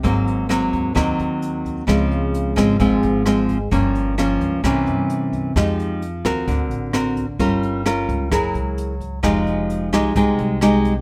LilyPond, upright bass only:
\new Staff \with { instrumentName = "Upright bass" } { \clef bass \time 4/4 \key f \minor \tempo 4 = 130 aes,,4. ees,8 ees,8 ees,4. | des,4. aes,,8 aes,,8 aes,,4. | g,,4. des,8 c,8 g,4. | f,4. ees,8 d,8 a,,4. |
g,,4. des,8 ges,,8 des,4. | f,,4. c,8 c,8 c,4. | }